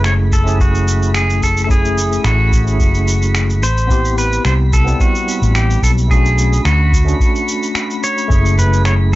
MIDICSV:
0, 0, Header, 1, 6, 480
1, 0, Start_track
1, 0, Key_signature, 3, "minor"
1, 0, Tempo, 550459
1, 1478, Time_signature, 4, 2, 24, 8
1, 7981, End_track
2, 0, Start_track
2, 0, Title_t, "Synth texture"
2, 0, Program_c, 0, 99
2, 0, Note_on_c, 0, 83, 81
2, 7981, Note_off_c, 0, 83, 0
2, 7981, End_track
3, 0, Start_track
3, 0, Title_t, "Pedal steel guitar"
3, 0, Program_c, 1, 26
3, 48, Note_on_c, 1, 73, 95
3, 111, Note_off_c, 1, 73, 0
3, 289, Note_on_c, 1, 69, 88
3, 531, Note_off_c, 1, 69, 0
3, 531, Note_on_c, 1, 66, 92
3, 972, Note_off_c, 1, 66, 0
3, 1010, Note_on_c, 1, 68, 91
3, 1247, Note_off_c, 1, 68, 0
3, 1251, Note_on_c, 1, 69, 85
3, 1422, Note_off_c, 1, 69, 0
3, 1433, Note_on_c, 1, 69, 67
3, 1485, Note_off_c, 1, 69, 0
3, 1490, Note_on_c, 1, 68, 94
3, 1964, Note_off_c, 1, 68, 0
3, 1967, Note_on_c, 1, 66, 84
3, 3167, Note_on_c, 1, 72, 93
3, 3199, Note_off_c, 1, 66, 0
3, 3643, Note_off_c, 1, 72, 0
3, 3646, Note_on_c, 1, 71, 86
3, 3883, Note_off_c, 1, 71, 0
3, 3887, Note_on_c, 1, 72, 93
3, 3950, Note_off_c, 1, 72, 0
3, 4128, Note_on_c, 1, 69, 86
3, 4367, Note_on_c, 1, 66, 85
3, 4370, Note_off_c, 1, 69, 0
3, 4843, Note_off_c, 1, 66, 0
3, 4847, Note_on_c, 1, 67, 85
3, 5084, Note_off_c, 1, 67, 0
3, 5088, Note_on_c, 1, 69, 84
3, 5151, Note_off_c, 1, 69, 0
3, 5326, Note_on_c, 1, 68, 89
3, 5769, Note_off_c, 1, 68, 0
3, 5804, Note_on_c, 1, 66, 84
3, 7008, Note_on_c, 1, 73, 96
3, 7037, Note_off_c, 1, 66, 0
3, 7485, Note_off_c, 1, 73, 0
3, 7488, Note_on_c, 1, 71, 81
3, 7720, Note_off_c, 1, 71, 0
3, 7723, Note_on_c, 1, 73, 90
3, 7787, Note_off_c, 1, 73, 0
3, 7981, End_track
4, 0, Start_track
4, 0, Title_t, "Tine electric piano"
4, 0, Program_c, 2, 4
4, 0, Control_c, 2, 64, 127
4, 0, Note_on_c, 2, 57, 83
4, 0, Note_on_c, 2, 61, 79
4, 0, Note_on_c, 2, 64, 77
4, 0, Note_on_c, 2, 68, 92
4, 364, Note_off_c, 2, 57, 0
4, 370, Note_off_c, 2, 61, 0
4, 377, Note_off_c, 2, 64, 0
4, 382, Note_on_c, 2, 57, 87
4, 383, Note_off_c, 2, 68, 0
4, 394, Note_on_c, 2, 61, 78
4, 409, Note_on_c, 2, 64, 83
4, 422, Note_on_c, 2, 68, 87
4, 1440, Note_off_c, 2, 57, 0
4, 1446, Note_off_c, 2, 61, 0
4, 1453, Note_off_c, 2, 64, 0
4, 1455, Note_on_c, 2, 57, 80
4, 1460, Note_off_c, 2, 68, 0
4, 1469, Note_on_c, 2, 61, 74
4, 1483, Note_on_c, 2, 64, 74
4, 1496, Note_on_c, 2, 68, 83
4, 2282, Note_off_c, 2, 57, 0
4, 2289, Note_off_c, 2, 61, 0
4, 2296, Note_off_c, 2, 64, 0
4, 2302, Note_off_c, 2, 68, 0
4, 2302, Note_on_c, 2, 57, 71
4, 2315, Note_on_c, 2, 61, 70
4, 2329, Note_on_c, 2, 64, 63
4, 2341, Note_on_c, 2, 68, 76
4, 3134, Note_off_c, 2, 57, 0
4, 3140, Note_off_c, 2, 61, 0
4, 3147, Note_off_c, 2, 64, 0
4, 3153, Note_off_c, 2, 68, 0
4, 3170, Control_c, 2, 64, 0
4, 3299, Control_c, 2, 64, 127
4, 3376, Note_on_c, 2, 59, 85
4, 3389, Note_on_c, 2, 60, 78
4, 3403, Note_on_c, 2, 64, 81
4, 3417, Note_on_c, 2, 67, 99
4, 4203, Note_off_c, 2, 59, 0
4, 4209, Note_off_c, 2, 60, 0
4, 4216, Note_off_c, 2, 64, 0
4, 4223, Note_off_c, 2, 67, 0
4, 4224, Note_on_c, 2, 59, 86
4, 4237, Note_on_c, 2, 60, 81
4, 4250, Note_on_c, 2, 64, 80
4, 4264, Note_on_c, 2, 55, 99
4, 5281, Note_off_c, 2, 59, 0
4, 5287, Note_off_c, 2, 60, 0
4, 5294, Note_off_c, 2, 64, 0
4, 5296, Note_on_c, 2, 57, 81
4, 5301, Note_off_c, 2, 55, 0
4, 5311, Note_on_c, 2, 61, 72
4, 5325, Note_on_c, 2, 62, 77
4, 5331, Control_c, 2, 64, 0
4, 5337, Note_on_c, 2, 66, 90
4, 5469, Control_c, 2, 64, 127
4, 6123, Note_off_c, 2, 57, 0
4, 6130, Note_off_c, 2, 61, 0
4, 6137, Note_off_c, 2, 62, 0
4, 6143, Note_off_c, 2, 66, 0
4, 6144, Note_on_c, 2, 57, 78
4, 6156, Note_on_c, 2, 61, 73
4, 6171, Note_on_c, 2, 62, 69
4, 6184, Note_on_c, 2, 66, 84
4, 7201, Note_off_c, 2, 57, 0
4, 7207, Note_off_c, 2, 61, 0
4, 7214, Note_off_c, 2, 62, 0
4, 7218, Note_on_c, 2, 57, 88
4, 7221, Note_off_c, 2, 66, 0
4, 7231, Note_on_c, 2, 61, 79
4, 7245, Note_on_c, 2, 64, 81
4, 7250, Control_c, 2, 64, 0
4, 7258, Note_on_c, 2, 68, 94
4, 7381, Control_c, 2, 64, 127
4, 7981, Note_off_c, 2, 57, 0
4, 7981, Note_off_c, 2, 61, 0
4, 7981, Note_off_c, 2, 64, 0
4, 7981, Note_off_c, 2, 68, 0
4, 7981, End_track
5, 0, Start_track
5, 0, Title_t, "Fretless electric bass"
5, 0, Program_c, 3, 35
5, 0, Note_on_c, 3, 30, 89
5, 1894, Note_off_c, 3, 30, 0
5, 1956, Note_on_c, 3, 33, 90
5, 2438, Note_off_c, 3, 33, 0
5, 2438, Note_on_c, 3, 30, 83
5, 3161, Note_off_c, 3, 30, 0
5, 3161, Note_on_c, 3, 33, 73
5, 3816, Note_off_c, 3, 33, 0
5, 3880, Note_on_c, 3, 36, 92
5, 4296, Note_off_c, 3, 36, 0
5, 4726, Note_on_c, 3, 33, 104
5, 5016, Note_off_c, 3, 33, 0
5, 5078, Note_on_c, 3, 35, 94
5, 5735, Note_off_c, 3, 35, 0
5, 5799, Note_on_c, 3, 38, 94
5, 6215, Note_off_c, 3, 38, 0
5, 7237, Note_on_c, 3, 30, 93
5, 7981, Note_off_c, 3, 30, 0
5, 7981, End_track
6, 0, Start_track
6, 0, Title_t, "Drums"
6, 38, Note_on_c, 9, 26, 100
6, 46, Note_on_c, 9, 82, 40
6, 125, Note_off_c, 9, 26, 0
6, 133, Note_off_c, 9, 82, 0
6, 277, Note_on_c, 9, 36, 103
6, 284, Note_on_c, 9, 82, 73
6, 364, Note_off_c, 9, 36, 0
6, 372, Note_off_c, 9, 82, 0
6, 413, Note_on_c, 9, 82, 32
6, 500, Note_off_c, 9, 82, 0
6, 517, Note_on_c, 9, 36, 107
6, 527, Note_on_c, 9, 82, 39
6, 605, Note_off_c, 9, 36, 0
6, 614, Note_off_c, 9, 82, 0
6, 651, Note_on_c, 9, 82, 28
6, 739, Note_off_c, 9, 82, 0
6, 766, Note_on_c, 9, 82, 68
6, 853, Note_off_c, 9, 82, 0
6, 892, Note_on_c, 9, 82, 30
6, 979, Note_off_c, 9, 82, 0
6, 998, Note_on_c, 9, 26, 98
6, 1005, Note_on_c, 9, 82, 45
6, 1085, Note_off_c, 9, 26, 0
6, 1092, Note_off_c, 9, 82, 0
6, 1132, Note_on_c, 9, 82, 30
6, 1219, Note_off_c, 9, 82, 0
6, 1237, Note_on_c, 9, 36, 50
6, 1244, Note_on_c, 9, 82, 68
6, 1324, Note_off_c, 9, 36, 0
6, 1331, Note_off_c, 9, 82, 0
6, 1369, Note_on_c, 9, 82, 34
6, 1457, Note_off_c, 9, 82, 0
6, 1477, Note_on_c, 9, 36, 117
6, 1485, Note_on_c, 9, 82, 43
6, 1565, Note_off_c, 9, 36, 0
6, 1573, Note_off_c, 9, 82, 0
6, 1612, Note_on_c, 9, 82, 27
6, 1699, Note_off_c, 9, 82, 0
6, 1725, Note_on_c, 9, 82, 69
6, 1812, Note_off_c, 9, 82, 0
6, 1850, Note_on_c, 9, 82, 31
6, 1938, Note_off_c, 9, 82, 0
6, 1956, Note_on_c, 9, 26, 101
6, 1964, Note_on_c, 9, 82, 44
6, 2043, Note_off_c, 9, 26, 0
6, 2051, Note_off_c, 9, 82, 0
6, 2197, Note_on_c, 9, 36, 103
6, 2204, Note_on_c, 9, 82, 73
6, 2284, Note_off_c, 9, 36, 0
6, 2291, Note_off_c, 9, 82, 0
6, 2329, Note_on_c, 9, 82, 31
6, 2417, Note_off_c, 9, 82, 0
6, 2438, Note_on_c, 9, 36, 115
6, 2442, Note_on_c, 9, 82, 43
6, 2525, Note_off_c, 9, 36, 0
6, 2529, Note_off_c, 9, 82, 0
6, 2567, Note_on_c, 9, 82, 30
6, 2654, Note_off_c, 9, 82, 0
6, 2683, Note_on_c, 9, 82, 76
6, 2770, Note_off_c, 9, 82, 0
6, 2810, Note_on_c, 9, 82, 31
6, 2897, Note_off_c, 9, 82, 0
6, 2917, Note_on_c, 9, 26, 97
6, 2925, Note_on_c, 9, 82, 46
6, 3005, Note_off_c, 9, 26, 0
6, 3012, Note_off_c, 9, 82, 0
6, 3050, Note_on_c, 9, 82, 29
6, 3137, Note_off_c, 9, 82, 0
6, 3164, Note_on_c, 9, 82, 76
6, 3252, Note_off_c, 9, 82, 0
6, 3290, Note_on_c, 9, 82, 32
6, 3378, Note_off_c, 9, 82, 0
6, 3398, Note_on_c, 9, 36, 111
6, 3406, Note_on_c, 9, 82, 44
6, 3485, Note_off_c, 9, 36, 0
6, 3493, Note_off_c, 9, 82, 0
6, 3531, Note_on_c, 9, 82, 29
6, 3619, Note_off_c, 9, 82, 0
6, 3645, Note_on_c, 9, 82, 67
6, 3732, Note_off_c, 9, 82, 0
6, 3771, Note_on_c, 9, 82, 32
6, 3858, Note_off_c, 9, 82, 0
6, 3878, Note_on_c, 9, 26, 97
6, 3885, Note_on_c, 9, 82, 48
6, 3965, Note_off_c, 9, 26, 0
6, 3972, Note_off_c, 9, 82, 0
6, 4118, Note_on_c, 9, 36, 104
6, 4124, Note_on_c, 9, 82, 76
6, 4206, Note_off_c, 9, 36, 0
6, 4211, Note_off_c, 9, 82, 0
6, 4250, Note_on_c, 9, 82, 33
6, 4337, Note_off_c, 9, 82, 0
6, 4359, Note_on_c, 9, 36, 117
6, 4364, Note_on_c, 9, 82, 43
6, 4446, Note_off_c, 9, 36, 0
6, 4451, Note_off_c, 9, 82, 0
6, 4491, Note_on_c, 9, 82, 30
6, 4578, Note_off_c, 9, 82, 0
6, 4607, Note_on_c, 9, 82, 70
6, 4694, Note_off_c, 9, 82, 0
6, 4732, Note_on_c, 9, 82, 32
6, 4819, Note_off_c, 9, 82, 0
6, 4839, Note_on_c, 9, 26, 99
6, 4847, Note_on_c, 9, 82, 48
6, 4927, Note_off_c, 9, 26, 0
6, 4934, Note_off_c, 9, 82, 0
6, 4974, Note_on_c, 9, 82, 30
6, 5061, Note_off_c, 9, 82, 0
6, 5078, Note_on_c, 9, 36, 58
6, 5087, Note_on_c, 9, 82, 76
6, 5165, Note_off_c, 9, 36, 0
6, 5174, Note_off_c, 9, 82, 0
6, 5213, Note_on_c, 9, 82, 31
6, 5300, Note_off_c, 9, 82, 0
6, 5318, Note_on_c, 9, 36, 120
6, 5327, Note_on_c, 9, 82, 44
6, 5405, Note_off_c, 9, 36, 0
6, 5414, Note_off_c, 9, 82, 0
6, 5453, Note_on_c, 9, 82, 28
6, 5541, Note_off_c, 9, 82, 0
6, 5566, Note_on_c, 9, 82, 72
6, 5653, Note_off_c, 9, 82, 0
6, 5693, Note_on_c, 9, 82, 31
6, 5780, Note_off_c, 9, 82, 0
6, 5801, Note_on_c, 9, 26, 96
6, 5808, Note_on_c, 9, 82, 45
6, 5888, Note_off_c, 9, 26, 0
6, 5896, Note_off_c, 9, 82, 0
6, 6037, Note_on_c, 9, 36, 106
6, 6049, Note_on_c, 9, 82, 75
6, 6125, Note_off_c, 9, 36, 0
6, 6136, Note_off_c, 9, 82, 0
6, 6174, Note_on_c, 9, 82, 33
6, 6261, Note_off_c, 9, 82, 0
6, 6277, Note_on_c, 9, 36, 118
6, 6286, Note_on_c, 9, 82, 42
6, 6364, Note_off_c, 9, 36, 0
6, 6373, Note_off_c, 9, 82, 0
6, 6413, Note_on_c, 9, 82, 29
6, 6500, Note_off_c, 9, 82, 0
6, 6526, Note_on_c, 9, 82, 71
6, 6613, Note_off_c, 9, 82, 0
6, 6652, Note_on_c, 9, 82, 33
6, 6739, Note_off_c, 9, 82, 0
6, 6759, Note_on_c, 9, 26, 99
6, 6766, Note_on_c, 9, 82, 46
6, 6846, Note_off_c, 9, 26, 0
6, 6854, Note_off_c, 9, 82, 0
6, 6892, Note_on_c, 9, 82, 32
6, 6979, Note_off_c, 9, 82, 0
6, 7006, Note_on_c, 9, 82, 76
6, 7093, Note_off_c, 9, 82, 0
6, 7131, Note_on_c, 9, 82, 35
6, 7218, Note_off_c, 9, 82, 0
6, 7237, Note_on_c, 9, 36, 109
6, 7246, Note_on_c, 9, 82, 43
6, 7324, Note_off_c, 9, 36, 0
6, 7333, Note_off_c, 9, 82, 0
6, 7373, Note_on_c, 9, 82, 28
6, 7460, Note_off_c, 9, 82, 0
6, 7480, Note_on_c, 9, 64, 68
6, 7489, Note_on_c, 9, 82, 71
6, 7567, Note_off_c, 9, 64, 0
6, 7576, Note_off_c, 9, 82, 0
6, 7614, Note_on_c, 9, 82, 30
6, 7701, Note_off_c, 9, 82, 0
6, 7720, Note_on_c, 9, 26, 95
6, 7727, Note_on_c, 9, 82, 42
6, 7807, Note_off_c, 9, 26, 0
6, 7814, Note_off_c, 9, 82, 0
6, 7981, End_track
0, 0, End_of_file